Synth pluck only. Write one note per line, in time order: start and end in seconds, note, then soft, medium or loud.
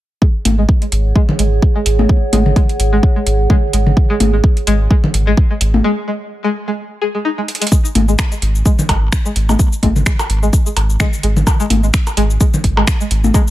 0.22 0.24 G#3 medium
0.58 0.64 G#3 loud
0.82 0.84 G#3 medium
1.16 1.22 G#3 loud
1.39 1.42 G#3 medium
1.76 1.81 G#3 loud
1.99 2.01 G#3 medium
2.33 2.39 G#3 medium
2.56 2.59 G#3 medium
2.93 2.98 G#3 loud
3.16 3.18 G#3 medium
3.50 3.57 G#3 loud
3.73 3.76 G#3 medium
4.10 4.15 G#3 loud
4.33 4.35 G#3 medium
4.67 4.74 G#3 loud
4.91 4.93 G#3 medium
5.27 5.32 G#3 loud
5.51 5.53 G#3 medium
5.84 5.91 G#3 loud
6.08 6.10 G#3 medium
6.44 6.50 G#3 loud
6.68 6.70 G#3 medium
7.02 7.08 G#4 medium
7.15 7.18 G#3 medium
7.25 7.29 D#4 medium
7.38 7.40 G#3 medium
7.62 7.65 G#3 medium
7.72 7.74 G#3 medium
8.08 8.14 G#3 loud
8.32 8.34 G#3 medium
8.66 8.72 G#3 loud
8.89 8.92 G#3 medium
9.26 9.31 G#3 loud
9.49 9.51 G#3 medium
9.83 9.89 G#3 medium
10.06 10.09 G#3 medium
10.43 10.48 G#3 loud
10.66 10.68 G#3 medium
11.00 11.07 G#3 loud
11.23 11.26 G#3 medium
11.60 11.65 G#3 loud
11.83 11.86 G#3 medium
12.17 12.24 G#3 loud
12.41 12.43 G#3 medium
12.77 12.82 G#3 loud
13.01 13.03 G#3 medium
13.34 13.41 G#3 loud